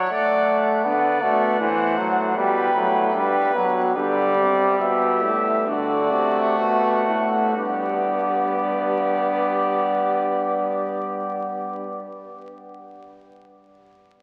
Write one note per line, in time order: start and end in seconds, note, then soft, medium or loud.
0.00 0.12 C#5 loud
0.00 0.84 F#5 medium
0.11 0.86 A3 medium
0.11 0.59 D5 loud
0.84 1.20 D3 medium
0.84 1.23 B3 loud
0.84 1.57 D5 loud
0.84 2.34 F#5 loud
1.22 1.62 B2 medium
1.22 1.59 A3 loud
1.60 2.36 A2 medium
1.60 1.99 E3 loud
1.60 2.36 C5 medium
1.97 2.36 F#3 loud
2.36 2.75 B2 medium
2.36 2.74 G3 loud
2.36 3.14 B4 medium
2.36 3.62 G5 loud
2.75 3.14 A2 medium
2.75 3.14 F#3 loud
3.14 3.54 G2 medium
3.14 3.54 G3 loud
3.14 3.95 B4 loud
3.55 3.97 B2 medium
3.55 3.95 F#3 loud
3.95 4.36 D3 medium
3.95 5.30 G3 loud
3.95 4.79 G4 medium
3.95 4.81 D5 loud
4.37 4.78 C3 medium
4.79 5.24 B2 loud
4.79 5.66 G4 medium
4.79 5.69 E5 medium
5.23 5.66 A2 medium
5.67 6.14 D3 medium
5.67 7.53 A3 loud
5.67 7.53 F#4 loud
5.67 6.59 D5 medium
6.12 6.58 C3 medium
6.59 7.06 B2 medium
6.59 7.55 F#5 medium
7.07 7.55 A2 medium
7.56 12.07 G2 medium
7.56 12.08 B3 medium
7.56 12.07 G4 medium
7.56 12.08 D5 medium